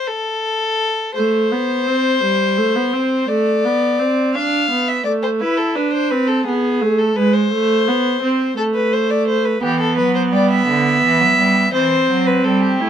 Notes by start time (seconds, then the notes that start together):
0.07 A4
1.15 A3 C5
1.51 B3
1.87 C4
2.23 G3
2.58 A3
2.75 B3
2.93 C4
3.28 A3 D5
3.65 B3
4.00 C4
4.35 D4 F5
4.70 B3
4.88 E5
5.05 A3 D5
5.23 C5
5.40 E4 B4
5.58 A4
5.76 D4 B4
5.93 C5
6.11 C4 B4
6.28 A4
6.45 B3 G#4
6.82 A3
6.98 A4
7.16 G#3 B4
7.33 C5
7.52 A3
7.87 B3
8.22 C4
8.57 A3 A4
8.75 B4
8.93 C5
9.11 D5
9.27 C5
9.45 B4
9.62 E3 B3 G4
9.80 A4
9.97 F#3 B4
10.15 C5
10.32 G3 D5
10.51 E5
10.67 D3
11.03 E3
11.20 F#3
11.38 G3
11.73 E3 C4 C5
12.09 F#3
12.27 B4
12.44 G3 A4
12.62 G4
12.80 A3 E4